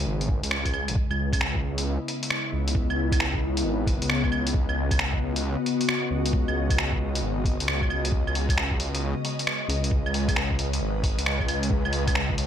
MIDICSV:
0, 0, Header, 1, 4, 480
1, 0, Start_track
1, 0, Key_signature, 4, "minor"
1, 0, Tempo, 447761
1, 1030, Time_signature, 4, 2, 24, 8
1, 13365, End_track
2, 0, Start_track
2, 0, Title_t, "Ambient pad"
2, 0, Program_c, 0, 92
2, 0, Note_on_c, 0, 49, 89
2, 0, Note_on_c, 0, 56, 83
2, 0, Note_on_c, 0, 71, 97
2, 0, Note_on_c, 0, 75, 76
2, 1017, Note_off_c, 0, 49, 0
2, 1024, Note_off_c, 0, 56, 0
2, 1030, Note_off_c, 0, 75, 0
2, 1030, Note_on_c, 0, 49, 86
2, 1227, Note_on_c, 0, 64, 89
2, 1271, Note_on_c, 0, 75, 78
2, 1321, Note_on_c, 0, 59, 100
2, 2086, Note_off_c, 0, 71, 0
2, 4926, Note_on_c, 0, 66, 92
2, 5072, Note_off_c, 0, 64, 0
2, 8882, Note_on_c, 0, 56, 95
2, 9143, Note_on_c, 0, 71, 85
2, 9390, Note_off_c, 0, 59, 0
2, 9985, Note_off_c, 0, 66, 0
2, 13365, Note_off_c, 0, 49, 0
2, 13365, Note_off_c, 0, 56, 0
2, 13365, Note_off_c, 0, 71, 0
2, 13365, Note_off_c, 0, 75, 0
2, 13365, End_track
3, 0, Start_track
3, 0, Title_t, "Detuned saw bass"
3, 0, Program_c, 1, 39
3, 67, Note_on_c, 1, 32, 84
3, 444, Note_off_c, 1, 32, 0
3, 464, Note_on_c, 1, 37, 86
3, 946, Note_on_c, 1, 32, 85
3, 962, Note_off_c, 1, 37, 0
3, 1023, Note_off_c, 1, 32, 0
3, 1183, Note_on_c, 1, 37, 103
3, 2125, Note_off_c, 1, 37, 0
3, 2710, Note_on_c, 1, 37, 113
3, 3086, Note_off_c, 1, 37, 0
3, 3103, Note_on_c, 1, 37, 98
3, 3898, Note_off_c, 1, 37, 0
3, 3906, Note_on_c, 1, 32, 84
3, 4284, Note_off_c, 1, 32, 0
3, 4305, Note_on_c, 1, 37, 88
3, 5005, Note_off_c, 1, 37, 0
3, 5022, Note_on_c, 1, 37, 105
3, 5964, Note_off_c, 1, 37, 0
3, 6547, Note_on_c, 1, 37, 110
3, 6924, Note_off_c, 1, 37, 0
3, 6944, Note_on_c, 1, 37, 101
3, 7738, Note_off_c, 1, 37, 0
3, 7746, Note_on_c, 1, 32, 82
3, 8124, Note_off_c, 1, 32, 0
3, 8142, Note_on_c, 1, 37, 90
3, 8613, Note_off_c, 1, 37, 0
3, 8619, Note_on_c, 1, 37, 85
3, 8838, Note_off_c, 1, 37, 0
3, 8861, Note_on_c, 1, 37, 102
3, 9803, Note_off_c, 1, 37, 0
3, 10381, Note_on_c, 1, 37, 106
3, 10761, Note_off_c, 1, 37, 0
3, 10782, Note_on_c, 1, 37, 104
3, 11577, Note_off_c, 1, 37, 0
3, 11590, Note_on_c, 1, 32, 85
3, 11966, Note_off_c, 1, 32, 0
3, 11985, Note_on_c, 1, 37, 90
3, 12685, Note_off_c, 1, 37, 0
3, 12708, Note_on_c, 1, 37, 102
3, 13365, Note_off_c, 1, 37, 0
3, 13365, End_track
4, 0, Start_track
4, 0, Title_t, "Drums"
4, 225, Note_on_c, 9, 42, 31
4, 306, Note_on_c, 9, 36, 104
4, 332, Note_off_c, 9, 42, 0
4, 413, Note_off_c, 9, 36, 0
4, 466, Note_on_c, 9, 42, 57
4, 548, Note_on_c, 9, 26, 96
4, 573, Note_off_c, 9, 42, 0
4, 655, Note_off_c, 9, 26, 0
4, 702, Note_on_c, 9, 36, 58
4, 703, Note_on_c, 9, 42, 45
4, 703, Note_on_c, 9, 75, 38
4, 788, Note_off_c, 9, 75, 0
4, 788, Note_on_c, 9, 75, 67
4, 809, Note_off_c, 9, 36, 0
4, 810, Note_off_c, 9, 42, 0
4, 896, Note_off_c, 9, 75, 0
4, 946, Note_on_c, 9, 42, 55
4, 1027, Note_on_c, 9, 36, 116
4, 1053, Note_off_c, 9, 42, 0
4, 1134, Note_off_c, 9, 36, 0
4, 1186, Note_on_c, 9, 75, 54
4, 1294, Note_off_c, 9, 75, 0
4, 1422, Note_on_c, 9, 36, 109
4, 1428, Note_on_c, 9, 42, 60
4, 1428, Note_on_c, 9, 75, 56
4, 1510, Note_on_c, 9, 26, 102
4, 1529, Note_off_c, 9, 36, 0
4, 1536, Note_off_c, 9, 42, 0
4, 1536, Note_off_c, 9, 75, 0
4, 1618, Note_off_c, 9, 26, 0
4, 1662, Note_on_c, 9, 36, 62
4, 1770, Note_off_c, 9, 36, 0
4, 1908, Note_on_c, 9, 42, 61
4, 2015, Note_off_c, 9, 42, 0
4, 2233, Note_on_c, 9, 42, 45
4, 2340, Note_off_c, 9, 42, 0
4, 2388, Note_on_c, 9, 42, 58
4, 2471, Note_on_c, 9, 26, 99
4, 2496, Note_off_c, 9, 42, 0
4, 2578, Note_off_c, 9, 26, 0
4, 2869, Note_on_c, 9, 42, 57
4, 2948, Note_on_c, 9, 36, 121
4, 2976, Note_off_c, 9, 42, 0
4, 3055, Note_off_c, 9, 36, 0
4, 3110, Note_on_c, 9, 75, 54
4, 3217, Note_off_c, 9, 75, 0
4, 3344, Note_on_c, 9, 36, 109
4, 3350, Note_on_c, 9, 42, 62
4, 3350, Note_on_c, 9, 75, 55
4, 3432, Note_on_c, 9, 26, 109
4, 3451, Note_off_c, 9, 36, 0
4, 3457, Note_off_c, 9, 42, 0
4, 3457, Note_off_c, 9, 75, 0
4, 3539, Note_off_c, 9, 26, 0
4, 3584, Note_on_c, 9, 36, 66
4, 3691, Note_off_c, 9, 36, 0
4, 3828, Note_on_c, 9, 42, 59
4, 3935, Note_off_c, 9, 42, 0
4, 4148, Note_on_c, 9, 36, 110
4, 4154, Note_on_c, 9, 42, 45
4, 4255, Note_off_c, 9, 36, 0
4, 4261, Note_off_c, 9, 42, 0
4, 4309, Note_on_c, 9, 42, 57
4, 4391, Note_on_c, 9, 26, 107
4, 4416, Note_off_c, 9, 42, 0
4, 4498, Note_off_c, 9, 26, 0
4, 4545, Note_on_c, 9, 36, 64
4, 4548, Note_on_c, 9, 75, 35
4, 4630, Note_off_c, 9, 75, 0
4, 4630, Note_on_c, 9, 75, 67
4, 4652, Note_off_c, 9, 36, 0
4, 4737, Note_off_c, 9, 75, 0
4, 4788, Note_on_c, 9, 42, 61
4, 4869, Note_on_c, 9, 36, 122
4, 4896, Note_off_c, 9, 42, 0
4, 4976, Note_off_c, 9, 36, 0
4, 5028, Note_on_c, 9, 75, 52
4, 5135, Note_off_c, 9, 75, 0
4, 5264, Note_on_c, 9, 36, 110
4, 5267, Note_on_c, 9, 42, 60
4, 5267, Note_on_c, 9, 75, 52
4, 5351, Note_on_c, 9, 26, 109
4, 5371, Note_off_c, 9, 36, 0
4, 5374, Note_off_c, 9, 42, 0
4, 5374, Note_off_c, 9, 75, 0
4, 5458, Note_off_c, 9, 26, 0
4, 5503, Note_on_c, 9, 36, 63
4, 5611, Note_off_c, 9, 36, 0
4, 5748, Note_on_c, 9, 42, 58
4, 5855, Note_off_c, 9, 42, 0
4, 6070, Note_on_c, 9, 42, 45
4, 6177, Note_off_c, 9, 42, 0
4, 6225, Note_on_c, 9, 42, 57
4, 6310, Note_on_c, 9, 26, 110
4, 6333, Note_off_c, 9, 42, 0
4, 6417, Note_off_c, 9, 26, 0
4, 6706, Note_on_c, 9, 42, 59
4, 6787, Note_on_c, 9, 36, 124
4, 6813, Note_off_c, 9, 42, 0
4, 6894, Note_off_c, 9, 36, 0
4, 6948, Note_on_c, 9, 75, 50
4, 7056, Note_off_c, 9, 75, 0
4, 7182, Note_on_c, 9, 36, 112
4, 7188, Note_on_c, 9, 42, 56
4, 7188, Note_on_c, 9, 75, 51
4, 7273, Note_on_c, 9, 26, 108
4, 7289, Note_off_c, 9, 36, 0
4, 7295, Note_off_c, 9, 42, 0
4, 7295, Note_off_c, 9, 75, 0
4, 7380, Note_off_c, 9, 26, 0
4, 7422, Note_on_c, 9, 36, 64
4, 7529, Note_off_c, 9, 36, 0
4, 7669, Note_on_c, 9, 42, 57
4, 7777, Note_off_c, 9, 42, 0
4, 7985, Note_on_c, 9, 36, 106
4, 7993, Note_on_c, 9, 42, 43
4, 8092, Note_off_c, 9, 36, 0
4, 8100, Note_off_c, 9, 42, 0
4, 8151, Note_on_c, 9, 42, 54
4, 8234, Note_on_c, 9, 26, 103
4, 8258, Note_off_c, 9, 42, 0
4, 8341, Note_off_c, 9, 26, 0
4, 8381, Note_on_c, 9, 36, 63
4, 8389, Note_on_c, 9, 75, 34
4, 8471, Note_off_c, 9, 75, 0
4, 8471, Note_on_c, 9, 75, 63
4, 8488, Note_off_c, 9, 36, 0
4, 8578, Note_off_c, 9, 75, 0
4, 8628, Note_on_c, 9, 42, 58
4, 8705, Note_on_c, 9, 36, 115
4, 8735, Note_off_c, 9, 42, 0
4, 8812, Note_off_c, 9, 36, 0
4, 8869, Note_on_c, 9, 75, 50
4, 8955, Note_on_c, 9, 46, 75
4, 8977, Note_off_c, 9, 75, 0
4, 9062, Note_off_c, 9, 46, 0
4, 9101, Note_on_c, 9, 36, 101
4, 9111, Note_on_c, 9, 42, 55
4, 9111, Note_on_c, 9, 75, 51
4, 9193, Note_on_c, 9, 26, 100
4, 9208, Note_off_c, 9, 36, 0
4, 9218, Note_off_c, 9, 42, 0
4, 9218, Note_off_c, 9, 75, 0
4, 9301, Note_off_c, 9, 26, 0
4, 9341, Note_on_c, 9, 36, 62
4, 9431, Note_on_c, 9, 46, 67
4, 9448, Note_off_c, 9, 36, 0
4, 9539, Note_off_c, 9, 46, 0
4, 9590, Note_on_c, 9, 42, 54
4, 9697, Note_off_c, 9, 42, 0
4, 9913, Note_on_c, 9, 46, 72
4, 10020, Note_off_c, 9, 46, 0
4, 10070, Note_on_c, 9, 42, 52
4, 10153, Note_on_c, 9, 26, 105
4, 10177, Note_off_c, 9, 42, 0
4, 10261, Note_off_c, 9, 26, 0
4, 10393, Note_on_c, 9, 46, 66
4, 10501, Note_off_c, 9, 46, 0
4, 10548, Note_on_c, 9, 42, 55
4, 10626, Note_on_c, 9, 36, 113
4, 10656, Note_off_c, 9, 42, 0
4, 10734, Note_off_c, 9, 36, 0
4, 10786, Note_on_c, 9, 75, 51
4, 10873, Note_on_c, 9, 46, 75
4, 10893, Note_off_c, 9, 75, 0
4, 10980, Note_off_c, 9, 46, 0
4, 11023, Note_on_c, 9, 36, 106
4, 11026, Note_on_c, 9, 42, 54
4, 11026, Note_on_c, 9, 75, 53
4, 11110, Note_on_c, 9, 26, 99
4, 11130, Note_off_c, 9, 36, 0
4, 11133, Note_off_c, 9, 42, 0
4, 11133, Note_off_c, 9, 75, 0
4, 11217, Note_off_c, 9, 26, 0
4, 11263, Note_on_c, 9, 36, 59
4, 11351, Note_on_c, 9, 46, 68
4, 11370, Note_off_c, 9, 36, 0
4, 11458, Note_off_c, 9, 46, 0
4, 11507, Note_on_c, 9, 42, 56
4, 11614, Note_off_c, 9, 42, 0
4, 11827, Note_on_c, 9, 36, 105
4, 11831, Note_on_c, 9, 46, 75
4, 11934, Note_off_c, 9, 36, 0
4, 11939, Note_off_c, 9, 46, 0
4, 11991, Note_on_c, 9, 42, 52
4, 12075, Note_on_c, 9, 26, 101
4, 12098, Note_off_c, 9, 42, 0
4, 12182, Note_off_c, 9, 26, 0
4, 12224, Note_on_c, 9, 36, 62
4, 12229, Note_on_c, 9, 75, 35
4, 12311, Note_off_c, 9, 75, 0
4, 12311, Note_on_c, 9, 46, 67
4, 12311, Note_on_c, 9, 75, 66
4, 12331, Note_off_c, 9, 36, 0
4, 12419, Note_off_c, 9, 46, 0
4, 12419, Note_off_c, 9, 75, 0
4, 12467, Note_on_c, 9, 42, 54
4, 12548, Note_on_c, 9, 36, 114
4, 12575, Note_off_c, 9, 42, 0
4, 12655, Note_off_c, 9, 36, 0
4, 12705, Note_on_c, 9, 75, 56
4, 12787, Note_on_c, 9, 46, 78
4, 12812, Note_off_c, 9, 75, 0
4, 12894, Note_off_c, 9, 46, 0
4, 12944, Note_on_c, 9, 36, 102
4, 12945, Note_on_c, 9, 42, 57
4, 12945, Note_on_c, 9, 75, 56
4, 13029, Note_on_c, 9, 26, 101
4, 13051, Note_off_c, 9, 36, 0
4, 13052, Note_off_c, 9, 42, 0
4, 13052, Note_off_c, 9, 75, 0
4, 13136, Note_off_c, 9, 26, 0
4, 13185, Note_on_c, 9, 36, 61
4, 13271, Note_on_c, 9, 46, 70
4, 13292, Note_off_c, 9, 36, 0
4, 13365, Note_off_c, 9, 46, 0
4, 13365, End_track
0, 0, End_of_file